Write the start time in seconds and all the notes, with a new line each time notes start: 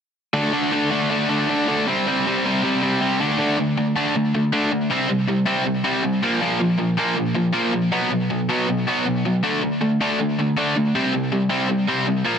0.33 D3 A3 D4
0.52 D3 A3 D4
0.71 D3 A3 D4
0.90 D3 A3 D4
1.10 D3 A3 D4
1.29 D3 A3 D4
1.49 D3 A3 D4
1.68 D3 A3 D4
1.87 C3 G3 C4
2.08 C3 G3 C4
2.27 C3 G3 C4
2.45 C3 G3 C4
2.63 C3 G3 C4
2.82 C3 G3 C4
3.01 C3 G3 C4
3.20 D3 A3 D4
3.38 D3 A3 D4
3.58 D3 A3
3.77 D3 A3
3.96 D3 A3 D4
4.15 D3 A3
4.34 D3 A3
4.53 D3 A3 D4
4.72 D3 A3
4.90 C3 G3 C4
5.08 C3 G3
5.28 C3 G3
5.46 C3 G3 C4
5.65 C3 G3
5.84 C3 G3 C4
6.03 C3 G3
6.23 A#2 F3 A#3
6.41 A#2 F3 A#3
6.60 A#2 F3
6.78 A#2 F3
6.97 A#2 F3 A#3
7.16 A#2 F3
7.35 A#2 F3
7.52 A#2 F3 A#3
7.73 A#2 F3
7.92 B2 F#3 B3
8.11 B2 F#3
8.30 B2 F#3
8.49 B2 F#3 B3
8.68 B2 F#3
8.87 B2 F#3 B3
9.05 B2 F#3
9.25 B2 F#3
9.43 D3 A3 D4
9.62 D3 A3
9.81 D3 A3
10.01 D3 A3 D4
10.19 D3 A3
10.39 D3 A3
10.57 D3 A3 D4
10.76 D3 A3
10.95 C3 G3 C4
11.13 C3 G3
11.32 C3 G3
11.49 C3 G3 C4
11.69 C3 G3
11.88 C3 G3 C4
12.07 C3 G3
12.25 A#2 F3 A#3